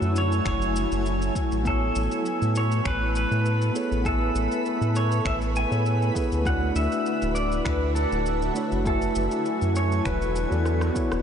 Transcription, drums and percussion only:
0.02 shaker
0.16 shaker
0.32 shaker
0.45 finger snap, kick, shaker
0.62 shaker
0.76 shaker
0.92 shaker
1.06 shaker
1.22 shaker
1.35 kick, shaker
1.52 shaker
1.65 kick, shaker
1.96 shaker
2.12 shaker
2.26 shaker
2.42 shaker
2.56 shaker
2.72 shaker
2.85 finger snap, kick, shaker
3.16 shaker
3.32 shaker
3.46 shaker
3.62 shaker
3.76 shaker
3.92 shaker
4.05 kick, shaker
4.36 shaker
4.52 shaker
4.66 shaker
4.82 shaker
4.96 shaker
5.12 shaker
5.25 finger snap, kick, shaker
5.42 shaker
5.56 shaker
5.72 shaker
5.86 shaker
6.02 shaker
6.15 kick, shaker
6.32 shaker
6.45 kick, shaker
6.76 shaker
6.92 shaker
7.06 shaker
7.22 shaker
7.36 shaker
7.52 shaker
7.65 finger snap, kick, shaker
7.96 shaker
8.12 shaker
8.26 shaker
8.42 shaker
8.56 shaker
8.72 shaker
8.86 kick, shaker
9.02 shaker
9.16 shaker
9.31 shaker
9.46 shaker
9.62 shaker
9.76 shaker
9.92 shaker
10.05 finger snap, kick, shaker
10.22 shaker
10.36 shaker
10.52 shaker
10.65 cross-stick, shaker
10.81 cross-stick, shaker
10.95 kick, shaker
11.12 cross-stick, shaker

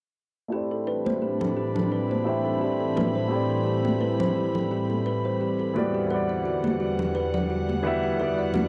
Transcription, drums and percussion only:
1.06 high conga
1.41 low conga
1.76 low conga
2.11 high conga
2.97 high conga, low conga
3.85 high conga
4.20 low conga
4.55 low conga
4.89 high conga
5.76 high conga
6.64 high conga
6.99 low conga
7.34 low conga
7.69 high conga
8.54 high conga, low conga

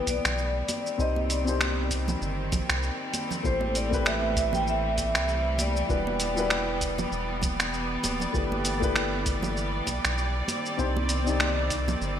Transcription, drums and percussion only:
0.07 kick, closed hi-hat, high conga, shaker
0.25 finger snap, shaker
0.38 shaker
0.69 closed hi-hat, high conga, shaker
0.86 shaker
0.99 kick, shaker
1.16 high conga
1.30 closed hi-hat, shaker
1.47 shaker
1.60 finger snap, high conga, shaker
1.91 kick, closed hi-hat, shaker
2.08 high conga, low conga, shaker
2.22 shaker
2.52 kick, closed hi-hat, high conga, low conga, shaker
2.69 finger snap, shaker
2.83 shaker
3.14 closed hi-hat, high conga, shaker
3.31 low conga, shaker
3.44 kick, shaker
3.61 high conga
3.75 closed hi-hat, shaker
3.92 kick, shaker
4.05 finger snap, high conga, shaker
4.36 kick, closed hi-hat, shaker
4.53 high conga, low conga, shaker
4.67 shaker
4.97 kick, closed hi-hat, high conga, shaker
5.15 finger snap, shaker
5.28 shaker
5.59 closed hi-hat, high conga, shaker
5.76 shaker
5.89 kick, shaker
6.07 high conga
6.20 closed hi-hat, shaker
6.37 shaker
6.50 finger snap, high conga, shaker
6.81 kick, closed hi-hat, shaker
6.98 high conga, low conga, shaker
7.12 shaker
7.41 kick, closed hi-hat, high conga, low conga, shaker
7.60 finger snap, shaker
7.74 shaker
8.03 closed hi-hat, high conga, shaker
8.20 low conga, shaker
8.34 kick, shaker
8.52 high conga
8.65 closed hi-hat, shaker
8.82 kick, shaker
8.96 finger snap, high conga, shaker
9.26 kick, closed hi-hat, shaker
9.43 high conga, low conga, shaker
9.57 shaker
9.87 kick, closed hi-hat, high conga, shaker
10.05 finger snap, shaker
10.18 shaker
10.48 closed hi-hat, high conga, shaker
10.66 shaker
10.79 kick, shaker
10.97 high conga
11.09 closed hi-hat, shaker
11.27 shaker
11.40 finger snap, high conga, shaker
11.70 kick, closed hi-hat, shaker
11.88 high conga, low conga, shaker
12.02 shaker

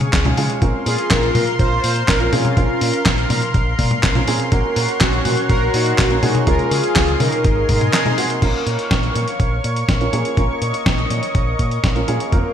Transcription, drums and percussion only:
0.01 closed hi-hat, high tom
0.13 kick, snare, clap, closed hi-hat
0.25 closed hi-hat, high tom
0.37 open hi-hat
0.50 closed hi-hat
0.62 kick, closed hi-hat
0.86 open hi-hat
0.98 closed hi-hat
1.11 kick, snare, clap, closed hi-hat
1.23 closed hi-hat
1.35 open hi-hat, high tom
1.47 closed hi-hat
1.59 kick, closed hi-hat
1.84 open hi-hat
1.96 closed hi-hat
2.08 kick, snare, clap, open hi-hat
2.20 closed hi-hat
2.33 open hi-hat, high tom
2.45 closed hi-hat, high tom
2.57 kick, closed hi-hat
2.81 open hi-hat
2.93 closed hi-hat
3.06 kick, snare, clap, closed hi-hat
3.18 closed hi-hat
3.30 open hi-hat, high tom
3.42 closed hi-hat
3.54 kick, closed hi-hat
3.79 kick, open hi-hat, high tom
3.91 closed hi-hat, high tom
4.03 kick, snare, clap, closed hi-hat
4.15 closed hi-hat, high tom
4.28 open hi-hat
4.40 closed hi-hat
4.52 kick, closed hi-hat
4.76 open hi-hat
4.89 closed hi-hat
5.01 kick, snare, clap, closed hi-hat
5.13 closed hi-hat
5.25 open hi-hat, high tom
5.37 closed hi-hat
5.50 kick, closed hi-hat
5.74 open hi-hat
5.86 closed hi-hat
5.98 kick, snare, clap, open hi-hat
6.11 closed hi-hat
6.23 open hi-hat, high tom
6.35 closed hi-hat, high tom
6.47 kick, closed hi-hat
6.59 closed hi-hat
6.71 open hi-hat
6.84 closed hi-hat
6.96 kick, snare, clap, open hi-hat
7.08 closed hi-hat
7.20 open hi-hat, high tom
7.32 closed hi-hat
7.44 kick, closed hi-hat
7.69 kick, open hi-hat, high tom
7.81 closed hi-hat, high tom
7.93 snare, clap, closed hi-hat
8.06 closed hi-hat, high tom
8.18 open hi-hat
8.30 closed hi-hat
8.42 kick, closed hi-hat, crash
8.67 closed hi-hat
8.79 closed hi-hat
8.91 kick, snare, closed hi-hat
9.03 closed hi-hat
9.15 closed hi-hat
9.28 closed hi-hat
9.40 kick, closed hi-hat
9.64 closed hi-hat
9.76 closed hi-hat
9.88 kick, snare, closed hi-hat
10.01 closed hi-hat
10.13 closed hi-hat
10.25 closed hi-hat
10.37 kick, closed hi-hat
10.62 closed hi-hat
10.74 closed hi-hat
10.86 kick, snare, closed hi-hat
10.98 closed hi-hat
11.10 closed hi-hat
11.23 closed hi-hat
11.35 kick, closed hi-hat
11.59 kick, closed hi-hat
11.71 closed hi-hat
11.84 kick, snare, closed hi-hat
11.96 closed hi-hat
12.08 closed hi-hat
12.20 closed hi-hat
12.32 kick, closed hi-hat

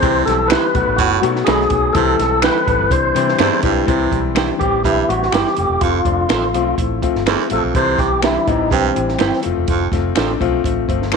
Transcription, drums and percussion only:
0.03 kick, closed hi-hat
0.28 snare, closed hi-hat
0.50 finger snap, snare, closed hi-hat
0.75 kick, closed hi-hat
0.98 kick, closed hi-hat
1.23 closed hi-hat
1.35 snare
1.47 finger snap, snare, closed hi-hat
1.60 snare
1.70 kick, closed hi-hat
1.95 kick, closed hi-hat
2.20 snare, closed hi-hat
2.42 finger snap, snare, closed hi-hat
2.67 kick, closed hi-hat
2.91 kick, closed hi-hat
3.16 closed hi-hat
3.28 snare
3.39 finger snap, snare, closed hi-hat
3.52 snare
3.63 kick, closed hi-hat
3.88 kick, closed hi-hat
4.12 kick, closed hi-hat
4.36 finger snap, snare, closed hi-hat
4.61 kick, closed hi-hat
4.84 kick, closed hi-hat
5.10 closed hi-hat
5.22 snare
5.32 finger snap, snare, closed hi-hat
5.47 snare
5.57 closed hi-hat
5.81 kick, closed hi-hat
6.05 kick, closed hi-hat
6.29 finger snap, snare, closed hi-hat
6.55 closed hi-hat
6.78 kick, closed hi-hat
7.03 kick, closed hi-hat
7.15 snare
7.27 finger snap, snare, closed hi-hat
7.40 snare
7.50 closed hi-hat
7.75 kick, closed hi-hat
7.98 kick, snare, closed hi-hat
8.23 finger snap, snare, closed hi-hat
8.48 kick, closed hi-hat
8.71 kick, closed hi-hat
8.96 closed hi-hat
9.09 snare
9.19 finger snap, snare, closed hi-hat
9.33 snare
9.43 closed hi-hat
9.68 kick, closed hi-hat
9.92 kick, snare, closed hi-hat
10.16 finger snap, snare, closed hi-hat
10.41 kick, closed hi-hat
10.64 kick, closed hi-hat
10.89 kick, closed hi-hat
11.02 snare
11.12 finger snap

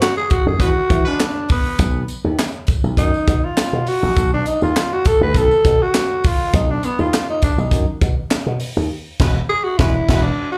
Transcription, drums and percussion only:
0.02 snare, clap, closed hi-hat
0.30 kick, closed hi-hat
0.60 kick, closed hi-hat
0.90 kick, closed hi-hat
1.20 snare, clap, closed hi-hat
1.49 kick, open hi-hat
1.79 kick, closed hi-hat, tambourine
2.08 closed hi-hat, tambourine
2.39 snare, clap, closed hi-hat, tambourine
2.67 kick, closed hi-hat, tambourine
2.84 tambourine
2.97 kick, closed hi-hat, tambourine
3.14 tambourine
3.28 kick, closed hi-hat, tambourine
3.57 snare, clap, closed hi-hat, tambourine
3.87 open hi-hat, tambourine
4.17 kick, closed hi-hat, tambourine
4.46 closed hi-hat, tambourine
4.61 tambourine
4.76 snare, clap, closed hi-hat, tambourine
5.05 kick, closed hi-hat, tambourine
5.34 kick, closed hi-hat, tambourine
5.51 tambourine
5.65 kick, closed hi-hat, tambourine
5.94 snare, clap, closed hi-hat, tambourine
6.24 kick, open hi-hat, tambourine
6.54 kick, closed hi-hat, tambourine
6.83 closed hi-hat, tambourine
6.99 tambourine
7.13 snare, clap, closed hi-hat, tambourine
7.42 kick, closed hi-hat, tambourine
7.58 tambourine
7.71 kick, closed hi-hat, tambourine
8.01 kick, closed hi-hat, tambourine
8.31 snare, clap, closed hi-hat, tambourine
8.60 open hi-hat, tambourine
8.76 tambourine
9.20 kick, snare, crash
9.79 kick, snare
10.09 kick, snare, crash

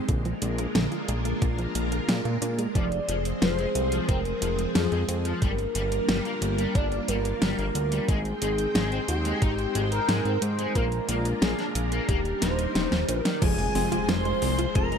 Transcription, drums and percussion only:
0.09 kick, closed hi-hat
0.25 closed hi-hat
0.42 closed hi-hat
0.58 closed hi-hat
0.75 snare, closed hi-hat
0.92 closed hi-hat
1.08 closed hi-hat
1.25 closed hi-hat
1.42 kick, closed hi-hat
1.58 closed hi-hat
1.75 closed hi-hat
1.92 closed hi-hat
2.09 snare, closed hi-hat
2.25 closed hi-hat
2.42 closed hi-hat
2.59 closed hi-hat
2.75 kick, closed hi-hat
2.92 closed hi-hat
3.09 closed hi-hat
3.25 closed hi-hat
3.42 snare, closed hi-hat
3.59 closed hi-hat
3.75 closed hi-hat
3.92 closed hi-hat
4.09 kick, closed hi-hat
4.25 closed hi-hat
4.42 closed hi-hat
4.59 closed hi-hat
4.75 snare, closed hi-hat
4.92 closed hi-hat
5.09 closed hi-hat
5.25 closed hi-hat
5.42 kick, closed hi-hat
5.58 closed hi-hat
5.75 closed hi-hat
5.92 closed hi-hat
6.09 snare, closed hi-hat
6.25 closed hi-hat
6.42 closed hi-hat
6.58 closed hi-hat
6.75 kick, closed hi-hat
6.92 closed hi-hat
7.08 closed hi-hat
7.25 closed hi-hat
7.42 snare, closed hi-hat
7.59 closed hi-hat
7.75 closed hi-hat
7.92 closed hi-hat
8.09 kick, closed hi-hat
8.25 closed hi-hat
8.42 closed hi-hat
8.58 closed hi-hat
8.75 snare, closed hi-hat
8.92 closed hi-hat
9.08 closed hi-hat
9.25 closed hi-hat
9.42 kick, closed hi-hat
9.59 closed hi-hat
9.75 closed hi-hat
9.92 closed hi-hat
10.09 snare, closed hi-hat
10.25 closed hi-hat
10.42 closed hi-hat
10.59 closed hi-hat
10.75 kick, closed hi-hat
10.92 closed hi-hat
11.09 closed hi-hat
11.25 closed hi-hat
11.42 snare, closed hi-hat
11.59 snare, closed hi-hat
11.75 closed hi-hat
11.92 closed hi-hat
12.09 kick, closed hi-hat
12.25 closed hi-hat
12.42 snare, closed hi-hat
12.59 closed hi-hat
12.75 snare, closed hi-hat
12.92 snare, closed hi-hat
13.09 closed hi-hat
13.25 snare, closed hi-hat
13.42 kick, closed hi-hat, crash
13.59 closed hi-hat
13.75 open hi-hat
13.92 closed hi-hat
14.09 snare, closed hi-hat
14.25 closed hi-hat
14.42 open hi-hat
14.59 closed hi-hat
14.75 kick, closed hi-hat
14.92 closed hi-hat

